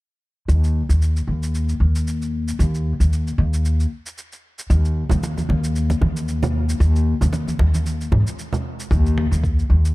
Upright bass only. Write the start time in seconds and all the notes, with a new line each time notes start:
0.48 D#2
0.89 D#2
1.27 D#2
1.80 D#2
2.59 D#2
3.00 D#2
3.38 D#2
4.70 D#2
5.11 D#2
5.49 D#2
6.01 D#2
6.80 D#2
7.21 D#2
7.59 D#2
8.12 G#2
8.91 D#2
9.31 D#2
9.70 D#2